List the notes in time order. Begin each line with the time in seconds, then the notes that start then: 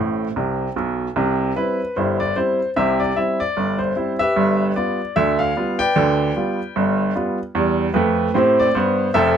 Already playing: A1 A2 G4 C5 E5
0.36 C2 C3
0.76 B1 B2
1.16 C2 C3
1.56 G3 C4 E4 B4
1.96 G1 G2 E4 G4 C5
2.20 D5
2.36 G3 C4 E4 C5
2.76 C2 C3 G4 C5 E5
3.00 D5
3.16 G3 C4 E4 E5
3.40 D5
3.57 G1 G2
3.79 C5
3.96 G3 C4 E4
4.19 G4 B4 E5
4.36 G1 G2
4.76 G3 B3 F4 D5
5.16 D2 D3 E5
5.39 F5
5.56 G3 B3 F4
5.79 B4 D5 G5
5.96 D2 D3
6.36 G3 B3 F4
6.76 G1 G2
7.15 G3 B3 F4
7.55 E2 G3
7.94 F2 A3 B4
8.34 A2 C4 E4 G4 C5
8.59 D5
8.75 G2 B3 C5
9.14 F1 F2 A4 C5 E5